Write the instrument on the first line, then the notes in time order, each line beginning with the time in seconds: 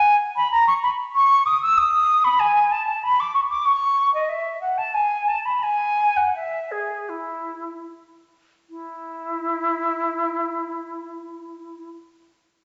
flute
Already playing: G#5
0.36 B5
0.51 A#5
0.67 C#6
0.83 B5
1.15 C#6
1.46 D#6
1.62 E6
1.77 D#6
2.24 B5
2.39 G#5
2.71 A5
3.03 B5
3.20 D6
3.34 C#6
3.50 D6
3.65 C#6
4.14 D#5
4.29 E5
4.61 F#5
4.78 A5
4.94 G#5
5.28 A5
5.45 B5
5.63 G#5
6.16 F#5
6.35 E5
6.71 G#4
7.09 E4
8.69 E4